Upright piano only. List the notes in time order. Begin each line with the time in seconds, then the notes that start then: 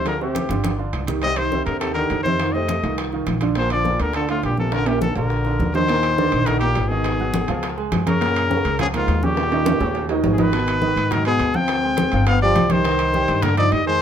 0.06 F3 F4 G#4
0.21 C3 C4 C5
0.50 D3 D4 F4
0.78 D3 D4 F4
1.08 D#3 D#4 G4
1.23 C3 C4 C5
1.38 D#3 D#4 G4
1.53 C3 C4 C5
1.82 D#3 D#4 G4
1.96 D#3 D#4 G4
2.25 C3 C4 C5
2.41 D#3 D#4 F4
2.55 C3 C4 C5
2.84 D#3 D#4 F4
3.13 D#3 D#4 F4
3.42 D3 D4 F4
3.57 A#2 A#3 A#4
3.70 D3 D4 F4
3.85 A#2 A#3 A#4
4.15 D3 D4 F4
4.29 D3 D4 F4
4.58 A#2 A#3 A#4
4.73 D3 D4 F4
4.88 A#2 A#3 A#4
5.17 D3 D4 F4
5.46 D3 D4 F4
5.75 D3 D4 D#4
5.89 A#2 A#3 A#4
6.18 D3 D4 D5
6.47 D#3 D#4 D#5
6.62 A#3 A#4 A#5
6.91 D#3 D#4 D#5
7.20 F#3 F#4 F#5
7.49 F3 F4 F5
7.78 G#3 G#4 G#5
8.06 C#3 C#4 C#5
8.21 A#2 A#3 A#4
8.50 C#3 C#4 C#5
8.79 F3 F4 F5
8.94 A#3 A#4 A#5
9.23 C#3 C#4 C#5
9.52 D#3 D#4 D#5
9.81 C#3 C#4 C#5
10.10 D#3 D#4 D#5
10.39 D#3 D#4 D#5
10.53 B2 B3 B4
10.82 D#3 D#4 D#5
11.11 F#3 F#4 F#5
11.26 B3 B4 B5
11.55 F3 F4 F5
11.84 G#3 G#4 G#5
12.13 F3 F4 F5
12.42 G3 G4 G5
12.71 G3 G4 G5
12.86 D#3 D#4 D#5
13.14 G3 G4 G5
13.43 A#3 A#4 A#5
13.58 D#4 D#5 D#6
13.87 G#3 G#4 G#5